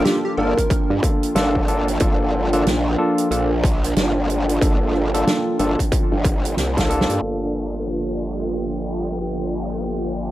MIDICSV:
0, 0, Header, 1, 7, 480
1, 0, Start_track
1, 0, Key_signature, -2, "minor"
1, 0, Tempo, 652174
1, 1477, Time_signature, 4, 2, 24, 8
1, 7590, End_track
2, 0, Start_track
2, 0, Title_t, "Analog synth pad"
2, 0, Program_c, 0, 89
2, 0, Note_on_c, 0, 65, 80
2, 0, Note_on_c, 0, 79, 71
2, 5310, Note_off_c, 0, 65, 0
2, 5318, Note_off_c, 0, 79, 0
2, 5319, Note_on_c, 0, 65, 76
2, 5936, Note_on_c, 0, 79, 78
2, 7590, Note_off_c, 0, 65, 0
2, 7590, Note_off_c, 0, 79, 0
2, 7590, End_track
3, 0, Start_track
3, 0, Title_t, "Digital synth lead"
3, 0, Program_c, 1, 84
3, 36, Note_on_c, 1, 67, 93
3, 130, Note_off_c, 1, 67, 0
3, 183, Note_on_c, 1, 67, 79
3, 243, Note_off_c, 1, 67, 0
3, 275, Note_on_c, 1, 70, 97
3, 663, Note_off_c, 1, 70, 0
3, 7590, End_track
4, 0, Start_track
4, 0, Title_t, "Tine electric piano"
4, 0, Program_c, 2, 4
4, 0, Note_on_c, 2, 58, 81
4, 0, Note_on_c, 2, 62, 73
4, 0, Note_on_c, 2, 65, 74
4, 0, Note_on_c, 2, 69, 91
4, 255, Note_off_c, 2, 65, 0
4, 256, Note_off_c, 2, 58, 0
4, 256, Note_off_c, 2, 62, 0
4, 256, Note_off_c, 2, 69, 0
4, 279, Note_on_c, 2, 62, 71
4, 280, Note_on_c, 2, 58, 75
4, 280, Note_on_c, 2, 65, 69
4, 280, Note_on_c, 2, 69, 86
4, 421, Note_off_c, 2, 58, 0
4, 421, Note_off_c, 2, 62, 0
4, 421, Note_off_c, 2, 65, 0
4, 421, Note_off_c, 2, 69, 0
4, 759, Note_on_c, 2, 65, 67
4, 760, Note_on_c, 2, 58, 73
4, 760, Note_on_c, 2, 62, 66
4, 760, Note_on_c, 2, 69, 79
4, 976, Note_off_c, 2, 58, 0
4, 976, Note_off_c, 2, 62, 0
4, 976, Note_off_c, 2, 65, 0
4, 976, Note_off_c, 2, 69, 0
4, 997, Note_on_c, 2, 58, 94
4, 997, Note_on_c, 2, 65, 85
4, 998, Note_on_c, 2, 62, 85
4, 998, Note_on_c, 2, 69, 104
4, 1215, Note_off_c, 2, 58, 0
4, 1215, Note_off_c, 2, 62, 0
4, 1215, Note_off_c, 2, 65, 0
4, 1215, Note_off_c, 2, 69, 0
4, 1237, Note_on_c, 2, 69, 94
4, 1238, Note_on_c, 2, 58, 89
4, 1238, Note_on_c, 2, 62, 80
4, 1238, Note_on_c, 2, 65, 82
4, 1380, Note_off_c, 2, 58, 0
4, 1380, Note_off_c, 2, 62, 0
4, 1380, Note_off_c, 2, 65, 0
4, 1380, Note_off_c, 2, 69, 0
4, 1478, Note_on_c, 2, 58, 91
4, 1478, Note_on_c, 2, 69, 102
4, 1479, Note_on_c, 2, 62, 83
4, 1479, Note_on_c, 2, 65, 83
4, 1829, Note_off_c, 2, 58, 0
4, 1829, Note_off_c, 2, 69, 0
4, 1830, Note_off_c, 2, 62, 0
4, 1830, Note_off_c, 2, 65, 0
4, 1863, Note_on_c, 2, 62, 86
4, 1863, Note_on_c, 2, 65, 83
4, 1863, Note_on_c, 2, 69, 103
4, 1864, Note_on_c, 2, 58, 96
4, 1954, Note_off_c, 2, 58, 0
4, 1954, Note_off_c, 2, 62, 0
4, 1954, Note_off_c, 2, 65, 0
4, 1954, Note_off_c, 2, 69, 0
4, 2197, Note_on_c, 2, 62, 89
4, 2197, Note_on_c, 2, 69, 107
4, 2198, Note_on_c, 2, 58, 97
4, 2198, Note_on_c, 2, 65, 88
4, 2415, Note_off_c, 2, 58, 0
4, 2415, Note_off_c, 2, 62, 0
4, 2415, Note_off_c, 2, 65, 0
4, 2415, Note_off_c, 2, 69, 0
4, 2438, Note_on_c, 2, 58, 77
4, 2438, Note_on_c, 2, 62, 70
4, 2438, Note_on_c, 2, 65, 69
4, 2438, Note_on_c, 2, 69, 82
4, 2580, Note_off_c, 2, 58, 0
4, 2580, Note_off_c, 2, 62, 0
4, 2580, Note_off_c, 2, 65, 0
4, 2580, Note_off_c, 2, 69, 0
4, 3397, Note_on_c, 2, 62, 75
4, 3398, Note_on_c, 2, 58, 81
4, 3398, Note_on_c, 2, 65, 74
4, 3398, Note_on_c, 2, 69, 90
4, 3749, Note_off_c, 2, 58, 0
4, 3749, Note_off_c, 2, 62, 0
4, 3749, Note_off_c, 2, 65, 0
4, 3749, Note_off_c, 2, 69, 0
4, 3785, Note_on_c, 2, 69, 91
4, 3786, Note_on_c, 2, 58, 78
4, 3786, Note_on_c, 2, 62, 73
4, 3787, Note_on_c, 2, 65, 74
4, 4095, Note_off_c, 2, 58, 0
4, 4095, Note_off_c, 2, 62, 0
4, 4095, Note_off_c, 2, 69, 0
4, 4096, Note_off_c, 2, 65, 0
4, 4118, Note_on_c, 2, 58, 77
4, 4118, Note_on_c, 2, 65, 70
4, 4118, Note_on_c, 2, 69, 84
4, 4119, Note_on_c, 2, 62, 71
4, 4260, Note_off_c, 2, 58, 0
4, 4260, Note_off_c, 2, 65, 0
4, 4260, Note_off_c, 2, 69, 0
4, 4261, Note_off_c, 2, 62, 0
4, 4984, Note_on_c, 2, 58, 85
4, 4985, Note_on_c, 2, 62, 77
4, 4985, Note_on_c, 2, 65, 78
4, 4986, Note_on_c, 2, 69, 94
4, 5063, Note_off_c, 2, 58, 0
4, 5063, Note_off_c, 2, 62, 0
4, 5063, Note_off_c, 2, 65, 0
4, 5064, Note_off_c, 2, 69, 0
4, 5076, Note_on_c, 2, 62, 73
4, 5076, Note_on_c, 2, 65, 73
4, 5076, Note_on_c, 2, 69, 86
4, 5077, Note_on_c, 2, 58, 78
4, 5294, Note_off_c, 2, 58, 0
4, 5294, Note_off_c, 2, 62, 0
4, 5294, Note_off_c, 2, 65, 0
4, 5294, Note_off_c, 2, 69, 0
4, 5315, Note_on_c, 2, 62, 64
4, 5315, Note_on_c, 2, 69, 74
4, 5316, Note_on_c, 2, 58, 69
4, 7590, Note_off_c, 2, 58, 0
4, 7590, Note_off_c, 2, 62, 0
4, 7590, Note_off_c, 2, 69, 0
4, 7590, End_track
5, 0, Start_track
5, 0, Title_t, "Ambient pad"
5, 0, Program_c, 3, 92
5, 0, Note_on_c, 3, 53, 76
5, 0, Note_on_c, 3, 58, 70
5, 0, Note_on_c, 3, 62, 85
5, 0, Note_on_c, 3, 81, 70
5, 5286, Note_off_c, 3, 53, 0
5, 5286, Note_off_c, 3, 58, 0
5, 5288, Note_off_c, 3, 81, 0
5, 5318, Note_off_c, 3, 62, 0
5, 5319, Note_on_c, 3, 67, 80
5, 5320, Note_on_c, 3, 58, 67
5, 5322, Note_on_c, 3, 53, 75
5, 7590, Note_off_c, 3, 53, 0
5, 7590, Note_off_c, 3, 58, 0
5, 7590, Note_off_c, 3, 67, 0
5, 7590, End_track
6, 0, Start_track
6, 0, Title_t, "Wobble bass"
6, 0, Program_c, 4, 39
6, 277, Note_on_c, 4, 31, 99
6, 400, Note_off_c, 4, 31, 0
6, 663, Note_on_c, 4, 43, 97
6, 742, Note_off_c, 4, 43, 0
6, 995, Note_on_c, 4, 31, 101
6, 1461, Note_off_c, 4, 31, 0
6, 1477, Note_on_c, 4, 31, 97
6, 1942, Note_off_c, 4, 31, 0
6, 1956, Note_on_c, 4, 34, 100
6, 2182, Note_off_c, 4, 34, 0
6, 2435, Note_on_c, 4, 34, 94
6, 2901, Note_off_c, 4, 34, 0
6, 2915, Note_on_c, 4, 31, 102
6, 3381, Note_off_c, 4, 31, 0
6, 3395, Note_on_c, 4, 31, 96
6, 3861, Note_off_c, 4, 31, 0
6, 4118, Note_on_c, 4, 31, 97
6, 4241, Note_off_c, 4, 31, 0
6, 4504, Note_on_c, 4, 31, 98
6, 4822, Note_off_c, 4, 31, 0
6, 4836, Note_on_c, 4, 36, 101
6, 5200, Note_off_c, 4, 36, 0
6, 5223, Note_on_c, 4, 43, 99
6, 5302, Note_off_c, 4, 43, 0
6, 5316, Note_on_c, 4, 31, 84
6, 7590, Note_off_c, 4, 31, 0
6, 7590, End_track
7, 0, Start_track
7, 0, Title_t, "Drums"
7, 39, Note_on_c, 9, 42, 76
7, 41, Note_on_c, 9, 38, 111
7, 112, Note_off_c, 9, 42, 0
7, 115, Note_off_c, 9, 38, 0
7, 424, Note_on_c, 9, 36, 59
7, 428, Note_on_c, 9, 42, 67
7, 498, Note_off_c, 9, 36, 0
7, 502, Note_off_c, 9, 42, 0
7, 517, Note_on_c, 9, 36, 98
7, 519, Note_on_c, 9, 42, 70
7, 590, Note_off_c, 9, 36, 0
7, 592, Note_off_c, 9, 42, 0
7, 757, Note_on_c, 9, 36, 102
7, 762, Note_on_c, 9, 42, 70
7, 830, Note_off_c, 9, 36, 0
7, 835, Note_off_c, 9, 42, 0
7, 904, Note_on_c, 9, 42, 58
7, 978, Note_off_c, 9, 42, 0
7, 998, Note_on_c, 9, 42, 68
7, 1002, Note_on_c, 9, 38, 107
7, 1072, Note_off_c, 9, 42, 0
7, 1076, Note_off_c, 9, 38, 0
7, 1143, Note_on_c, 9, 36, 55
7, 1217, Note_off_c, 9, 36, 0
7, 1236, Note_on_c, 9, 42, 51
7, 1310, Note_off_c, 9, 42, 0
7, 1384, Note_on_c, 9, 42, 61
7, 1428, Note_on_c, 9, 37, 53
7, 1458, Note_off_c, 9, 42, 0
7, 1470, Note_on_c, 9, 42, 76
7, 1476, Note_on_c, 9, 36, 113
7, 1502, Note_off_c, 9, 37, 0
7, 1543, Note_off_c, 9, 42, 0
7, 1550, Note_off_c, 9, 36, 0
7, 1861, Note_on_c, 9, 42, 71
7, 1934, Note_off_c, 9, 42, 0
7, 1962, Note_on_c, 9, 42, 74
7, 1966, Note_on_c, 9, 38, 108
7, 2035, Note_off_c, 9, 42, 0
7, 2040, Note_off_c, 9, 38, 0
7, 2341, Note_on_c, 9, 42, 63
7, 2414, Note_off_c, 9, 42, 0
7, 2439, Note_on_c, 9, 42, 77
7, 2513, Note_off_c, 9, 42, 0
7, 2676, Note_on_c, 9, 36, 101
7, 2683, Note_on_c, 9, 42, 71
7, 2749, Note_off_c, 9, 36, 0
7, 2757, Note_off_c, 9, 42, 0
7, 2827, Note_on_c, 9, 42, 68
7, 2901, Note_off_c, 9, 42, 0
7, 2917, Note_on_c, 9, 42, 75
7, 2921, Note_on_c, 9, 38, 121
7, 2991, Note_off_c, 9, 42, 0
7, 2995, Note_off_c, 9, 38, 0
7, 3162, Note_on_c, 9, 42, 54
7, 3235, Note_off_c, 9, 42, 0
7, 3306, Note_on_c, 9, 42, 59
7, 3379, Note_off_c, 9, 42, 0
7, 3396, Note_on_c, 9, 36, 115
7, 3400, Note_on_c, 9, 42, 81
7, 3470, Note_off_c, 9, 36, 0
7, 3474, Note_off_c, 9, 42, 0
7, 3638, Note_on_c, 9, 37, 38
7, 3711, Note_off_c, 9, 37, 0
7, 3785, Note_on_c, 9, 42, 71
7, 3859, Note_off_c, 9, 42, 0
7, 3881, Note_on_c, 9, 38, 108
7, 3881, Note_on_c, 9, 42, 70
7, 3955, Note_off_c, 9, 38, 0
7, 3955, Note_off_c, 9, 42, 0
7, 4116, Note_on_c, 9, 42, 53
7, 4189, Note_off_c, 9, 42, 0
7, 4264, Note_on_c, 9, 36, 60
7, 4267, Note_on_c, 9, 42, 65
7, 4337, Note_off_c, 9, 36, 0
7, 4340, Note_off_c, 9, 42, 0
7, 4356, Note_on_c, 9, 36, 100
7, 4356, Note_on_c, 9, 42, 74
7, 4430, Note_off_c, 9, 36, 0
7, 4430, Note_off_c, 9, 42, 0
7, 4596, Note_on_c, 9, 36, 104
7, 4598, Note_on_c, 9, 42, 69
7, 4670, Note_off_c, 9, 36, 0
7, 4672, Note_off_c, 9, 42, 0
7, 4747, Note_on_c, 9, 42, 66
7, 4821, Note_off_c, 9, 42, 0
7, 4837, Note_on_c, 9, 38, 62
7, 4841, Note_on_c, 9, 42, 82
7, 4911, Note_off_c, 9, 38, 0
7, 4915, Note_off_c, 9, 42, 0
7, 4983, Note_on_c, 9, 36, 56
7, 4986, Note_on_c, 9, 42, 53
7, 4995, Note_on_c, 9, 38, 80
7, 5057, Note_off_c, 9, 36, 0
7, 5059, Note_off_c, 9, 42, 0
7, 5068, Note_off_c, 9, 38, 0
7, 5081, Note_on_c, 9, 42, 55
7, 5155, Note_off_c, 9, 42, 0
7, 5160, Note_on_c, 9, 38, 95
7, 5222, Note_on_c, 9, 42, 61
7, 5234, Note_off_c, 9, 38, 0
7, 5296, Note_off_c, 9, 42, 0
7, 7590, End_track
0, 0, End_of_file